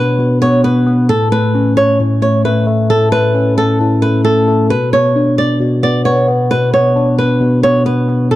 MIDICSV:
0, 0, Header, 1, 3, 480
1, 0, Start_track
1, 0, Key_signature, 2, "minor"
1, 0, Tempo, 451128
1, 1162, Time_signature, 4, 2, 24, 8
1, 8891, End_track
2, 0, Start_track
2, 0, Title_t, "Nylon-string guitar"
2, 0, Program_c, 0, 24
2, 0, Note_on_c, 0, 71, 84
2, 414, Note_off_c, 0, 71, 0
2, 443, Note_on_c, 0, 73, 86
2, 658, Note_off_c, 0, 73, 0
2, 683, Note_on_c, 0, 71, 71
2, 1133, Note_off_c, 0, 71, 0
2, 1161, Note_on_c, 0, 69, 89
2, 1377, Note_off_c, 0, 69, 0
2, 1404, Note_on_c, 0, 71, 80
2, 1854, Note_off_c, 0, 71, 0
2, 1882, Note_on_c, 0, 73, 87
2, 2097, Note_off_c, 0, 73, 0
2, 2363, Note_on_c, 0, 73, 66
2, 2578, Note_off_c, 0, 73, 0
2, 2606, Note_on_c, 0, 71, 75
2, 2819, Note_off_c, 0, 71, 0
2, 3085, Note_on_c, 0, 69, 89
2, 3299, Note_off_c, 0, 69, 0
2, 3320, Note_on_c, 0, 71, 85
2, 3772, Note_off_c, 0, 71, 0
2, 3806, Note_on_c, 0, 69, 85
2, 4019, Note_off_c, 0, 69, 0
2, 4278, Note_on_c, 0, 71, 74
2, 4495, Note_off_c, 0, 71, 0
2, 4518, Note_on_c, 0, 69, 81
2, 4971, Note_off_c, 0, 69, 0
2, 5004, Note_on_c, 0, 71, 88
2, 5218, Note_off_c, 0, 71, 0
2, 5245, Note_on_c, 0, 73, 78
2, 5695, Note_off_c, 0, 73, 0
2, 5726, Note_on_c, 0, 74, 84
2, 5939, Note_off_c, 0, 74, 0
2, 6204, Note_on_c, 0, 74, 79
2, 6418, Note_off_c, 0, 74, 0
2, 6439, Note_on_c, 0, 73, 83
2, 6655, Note_off_c, 0, 73, 0
2, 6924, Note_on_c, 0, 71, 82
2, 7138, Note_off_c, 0, 71, 0
2, 7166, Note_on_c, 0, 73, 79
2, 7615, Note_off_c, 0, 73, 0
2, 7644, Note_on_c, 0, 71, 80
2, 8094, Note_off_c, 0, 71, 0
2, 8122, Note_on_c, 0, 73, 87
2, 8337, Note_off_c, 0, 73, 0
2, 8362, Note_on_c, 0, 71, 71
2, 8813, Note_off_c, 0, 71, 0
2, 8842, Note_on_c, 0, 69, 89
2, 8891, Note_off_c, 0, 69, 0
2, 8891, End_track
3, 0, Start_track
3, 0, Title_t, "Tine electric piano"
3, 0, Program_c, 1, 4
3, 0, Control_c, 1, 64, 127
3, 0, Note_on_c, 1, 47, 95
3, 0, Note_on_c, 1, 59, 87
3, 0, Note_on_c, 1, 62, 95
3, 186, Note_off_c, 1, 47, 0
3, 199, Note_on_c, 1, 47, 93
3, 431, Note_off_c, 1, 59, 0
3, 444, Note_on_c, 1, 59, 94
3, 668, Note_off_c, 1, 59, 0
3, 680, Note_on_c, 1, 59, 91
3, 908, Note_off_c, 1, 59, 0
3, 921, Note_off_c, 1, 62, 0
3, 921, Note_on_c, 1, 59, 83
3, 1160, Note_off_c, 1, 47, 0
3, 1160, Note_on_c, 1, 45, 96
3, 1161, Note_off_c, 1, 59, 0
3, 1176, Control_c, 1, 64, 0
3, 1375, Control_c, 1, 64, 127
3, 1401, Note_on_c, 1, 57, 81
3, 1645, Note_on_c, 1, 61, 101
3, 2115, Note_off_c, 1, 45, 0
3, 2127, Note_on_c, 1, 45, 94
3, 2347, Note_off_c, 1, 57, 0
3, 2359, Note_on_c, 1, 57, 82
3, 2590, Note_off_c, 1, 57, 0
3, 2603, Note_on_c, 1, 57, 92
3, 2827, Note_off_c, 1, 57, 0
3, 2840, Note_on_c, 1, 57, 92
3, 2843, Note_off_c, 1, 61, 0
3, 3071, Note_off_c, 1, 45, 0
3, 3083, Note_on_c, 1, 45, 100
3, 3310, Note_off_c, 1, 57, 0
3, 3323, Note_on_c, 1, 57, 91
3, 3560, Note_on_c, 1, 61, 90
3, 4028, Note_off_c, 1, 45, 0
3, 4040, Note_on_c, 1, 45, 88
3, 4265, Note_off_c, 1, 57, 0
3, 4278, Note_on_c, 1, 57, 93
3, 4510, Note_off_c, 1, 57, 0
3, 4523, Note_on_c, 1, 57, 91
3, 4753, Note_off_c, 1, 57, 0
3, 4761, Note_off_c, 1, 61, 0
3, 4765, Note_on_c, 1, 57, 90
3, 5001, Note_off_c, 1, 45, 0
3, 5004, Note_off_c, 1, 57, 0
3, 5015, Control_c, 1, 64, 0
3, 5204, Control_c, 1, 64, 127
3, 5246, Note_on_c, 1, 59, 85
3, 5485, Note_on_c, 1, 62, 99
3, 5962, Note_on_c, 1, 47, 84
3, 6188, Note_off_c, 1, 59, 0
3, 6201, Note_on_c, 1, 59, 87
3, 6426, Note_off_c, 1, 59, 0
3, 6439, Note_on_c, 1, 59, 94
3, 6666, Note_off_c, 1, 59, 0
3, 6679, Note_on_c, 1, 59, 88
3, 6683, Note_off_c, 1, 62, 0
3, 6915, Note_off_c, 1, 47, 0
3, 6928, Note_on_c, 1, 47, 100
3, 7153, Note_off_c, 1, 59, 0
3, 7166, Note_on_c, 1, 59, 90
3, 7401, Note_on_c, 1, 62, 96
3, 7866, Note_off_c, 1, 47, 0
3, 7879, Note_on_c, 1, 47, 92
3, 8111, Note_off_c, 1, 59, 0
3, 8124, Note_on_c, 1, 59, 90
3, 8347, Note_off_c, 1, 59, 0
3, 8360, Note_on_c, 1, 59, 90
3, 8589, Note_off_c, 1, 59, 0
3, 8601, Note_off_c, 1, 62, 0
3, 8601, Note_on_c, 1, 59, 82
3, 8840, Note_off_c, 1, 47, 0
3, 8840, Note_on_c, 1, 45, 97
3, 8842, Note_off_c, 1, 59, 0
3, 8857, Control_c, 1, 64, 0
3, 8891, Note_off_c, 1, 45, 0
3, 8891, End_track
0, 0, End_of_file